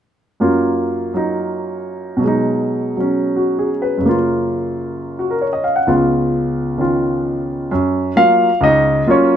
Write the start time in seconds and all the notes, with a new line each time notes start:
0.40 F#2 F#3 A#3 F4
1.14 F#3 D#4
2.17 B2 F#3
2.24 G#3 D#4
2.97 F#3 C#4
3.36 F#4
3.59 G#4
3.82 B4
3.98 F#2 C#3
4.06 A#3 F4
5.19 F#4
5.30 A#4
5.41 C#5
5.53 D#5
5.64 F5
5.76 F#5
5.87 C#2 C#3 B3 F4
6.78 D#3 C#4 F4
7.71 F#2
8.16 F#3 A#3 F4 F5
8.61 C#2 D#5
8.65 D#4
9.06 F#3 A#3 F4
9.10 C#4 C#5